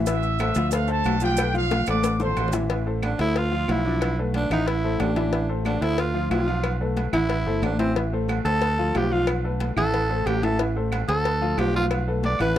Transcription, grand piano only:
0.07 0.34 E3 medium
0.07 0.34 E4 medium
0.07 0.35 E5 medium
0.40 0.53 A3 medium
0.40 0.53 A4 medium
0.40 0.54 C5 medium
0.56 0.69 F3 medium
0.56 0.69 F4 medium
0.56 0.69 F5 medium
0.72 0.86 A3 medium
0.72 0.86 A4 medium
0.72 0.86 C5 medium
0.88 1.15 A3 medium
0.88 1.15 A4 medium
0.88 1.16 C5 medium
1.22 1.35 F3 medium
1.22 1.36 F4 loud
1.22 1.36 F5 medium
1.38 1.51 A3 medium
1.38 1.52 A4 medium
1.38 1.52 B4 medium
1.54 1.81 F3 medium
1.54 1.82 F4 medium
1.54 1.82 F5 medium
1.87 2.15 A3 medium
1.87 2.14 A4 medium
1.87 2.15 C5 medium
2.20 2.47 A3 medium
2.20 2.48 A4 medium
2.20 2.47 C5 medium
2.54 2.67 E3 medium
2.54 2.67 E4 medium
2.54 2.67 E5 medium
2.70 2.83 E3 medium
2.70 2.84 E4 medium
2.70 2.84 E5 medium
2.86 3.13 A3 medium
2.86 3.13 A4 medium
2.86 3.14 C5 medium
3.19 3.46 A3 medium
3.19 3.46 A4 medium
3.19 3.46 C5 medium
3.52 3.65 F3 medium
3.52 3.65 F4 medium
3.52 3.66 F5 loud
3.68 3.82 F3 medium
3.68 3.82 F4 medium
3.68 3.82 F5 medium
3.85 4.12 F3 medium
3.85 4.12 D4 medium
3.85 4.12 D5 medium
4.19 4.45 A3 medium
4.19 4.45 A4 medium
4.19 4.46 B4 medium
4.52 4.78 E3 medium
4.52 4.78 E4 medium
4.52 4.79 E5 medium
4.84 5.11 A3 medium
4.84 5.11 A4 medium
4.84 5.11 C5 medium
5.17 5.30 E3 medium
5.17 5.30 E4 loud
5.17 5.30 E5 medium
5.32 5.46 E3 medium
5.32 5.46 E4 medium
5.32 5.46 E5 medium
5.49 5.76 A3 medium
5.49 5.76 A4 medium
5.49 5.76 C5 medium
5.81 6.09 A3 medium
5.81 6.09 A4 medium
5.81 6.09 C5 medium
6.14 6.28 F3 medium
6.14 6.28 F4 loud
6.14 6.28 F5 medium
6.31 6.45 F3 medium
6.31 6.45 F4 medium
6.31 6.45 F5 medium
6.47 6.74 F3 medium
6.47 6.75 F4 medium
6.47 6.75 F5 loud
6.81 7.08 A3 medium
6.81 7.08 A4 medium
6.81 7.08 B4 medium
7.13 7.40 E3 medium
7.13 7.40 E4 medium
7.13 7.41 E5 medium
7.46 7.73 A3 medium
7.46 7.74 A4 medium
7.46 7.74 C5 medium
7.79 7.93 E3 medium
7.79 7.93 E4 medium
7.79 7.93 E5 medium
7.97 8.10 E3 medium
7.97 8.10 E4 medium
7.97 8.10 E5 medium
8.13 8.40 A3 medium
8.13 8.40 A4 medium
8.13 8.40 C5 medium
8.45 8.72 A3 medium
8.45 8.72 A4 medium
8.45 8.72 C5 medium
8.78 8.92 F3 medium
8.78 8.92 F4 medium
8.78 8.92 F5 medium
8.95 9.08 F3 medium
8.95 9.08 F4 medium
8.95 9.09 F5 medium
9.12 9.38 F3 loud
9.12 9.38 F4 medium
9.12 9.39 F5 medium
9.44 9.71 A3 medium
9.44 9.71 A4 medium
9.44 9.71 B4 medium
9.76 10.03 E3 medium
9.76 10.04 E4 medium
9.76 10.04 E5 medium
10.10 10.36 A3 medium
10.10 10.37 A4 medium
10.10 10.37 C5 medium
10.43 10.56 E3 medium
10.43 10.57 E4 medium
10.43 10.57 E5 loud
10.60 10.73 E3 medium
10.60 10.73 E4 medium
10.60 10.74 E5 medium
10.76 11.03 A3 medium
10.76 11.03 A4 medium
10.76 11.03 C5 medium
11.09 11.36 A3 medium
11.09 11.36 A4 medium
11.09 11.36 C5 medium
11.41 11.55 F3 medium
11.41 11.55 F4 medium
11.41 11.55 F5 medium
11.58 11.71 F3 medium
11.58 11.71 F4 medium
11.58 11.71 F5 medium
11.75 12.01 F3 medium
11.75 12.02 F4 medium
11.75 12.02 F5 medium
12.08 12.34 A3 medium
12.08 12.34 A4 medium
12.08 12.34 B4 medium
12.41 12.58 E3 medium
12.41 12.58 E4 medium
12.41 12.58 E5 medium

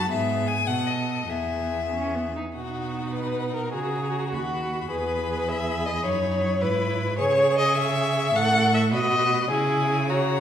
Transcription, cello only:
0.10 0.65 G#2 medium
0.69 1.29 B2 soft
1.31 2.33 E2 soft
2.56 3.76 B2 soft
3.74 4.34 C#3 soft
4.33 4.90 D#2 soft
4.90 6.03 E2 soft
6.06 6.64 F#2 medium
6.62 7.21 G#2 medium
7.20 8.35 C#3 medium
8.35 8.94 A2 medium
8.93 9.50 B2 medium
9.50 10.40 C#3 medium

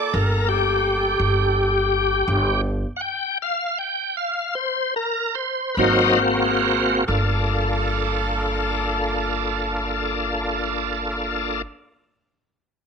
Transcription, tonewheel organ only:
0.00 0.14 D5 medium
0.14 0.49 A#4 medium
0.48 2.61 G4 loud
2.96 3.01 F#5 medium
3.01 3.38 G5 loud
3.42 3.78 F5 medium
3.78 4.16 G5 medium
4.17 4.55 F5 medium
4.55 4.94 C5 medium
4.96 5.35 A#4 loud
5.35 5.76 C5 medium
5.74 7.04 A#3 medium
5.74 7.04 C4 medium
5.74 5.79 B4 medium
5.79 6.18 F#3 medium
5.79 6.19 D#4 medium
5.79 7.05 F#4 medium
5.79 6.20 C5 medium
7.08 11.62 A#3 medium
7.08 11.62 D4 medium
7.08 11.62 F4 medium
7.08 11.62 A4 medium

